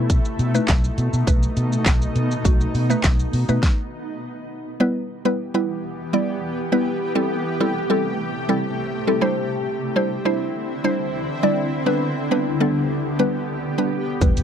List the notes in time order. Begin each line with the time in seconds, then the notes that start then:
Already playing: B2 A3 D#4 B4
0.10 kick, closed hi-hat, shaker
0.25 shaker
0.39 B2, closed hi-hat, shaker
0.54 A3 D#4 B4, shaker
0.68 B1, kick, snare, clap, closed hi-hat, shaker
0.84 shaker
0.98 B2, closed hi-hat, shaker
1.13 B2, shaker
1.27 B1 A3 D#4 B4, kick, closed hi-hat, shaker
1.43 shaker
1.57 B2, closed hi-hat, shaker
1.72 shaker
1.86 B1, kick, snare, clap, closed hi-hat, shaker
2.02 shaker
2.16 B2 B3, closed hi-hat, shaker
2.31 shaker
2.45 B1 A3 D#4 F#4, kick, closed hi-hat, shaker
2.61 shaker
2.75 B2, open hi-hat, shaker
2.90 A3 D#4 B4, shaker
3.04 B1, kick, snare, clap, closed hi-hat, shaker
3.19 shaker
3.33 B2, open hi-hat, shaker
3.49 B2 A3 D#4 B4, shaker
3.63 kick, snare
4.80 E3 G3 B3 E4 G4 B4
5.25 G3 B3 E4 B4
5.54 G3 B3 E4 B4
6.13 G3 B3 E4 D5
6.72 G3 B3 E4 B4
7.15 C3 G3 A3 C4 E4 A4
7.60 G3 C4 E4 A4
7.90 G3 C4 E4 A4
8.49 G3 C4 E4 A4
9.07 G3 C4 E4 A4
9.21 D3 G3 C4 D4 E4 C5
9.96 G3 D4 E4 C5
10.25 G3 D4 E4 C5
10.84 G3 D4 E4 C5
11.43 G3 D4 E4 D5
11.86 G3 B3 D4 G4 B4
12.31 G3 B3 D4 B4
12.60 G3 B3 D4 A4
13.19 G3 B3 D4 B4
13.78 G3 B3 D4 B4
14.21 E1 E3 G3 B3 E4 B4, kick, shaker
14.37 E1, closed hi-hat, shaker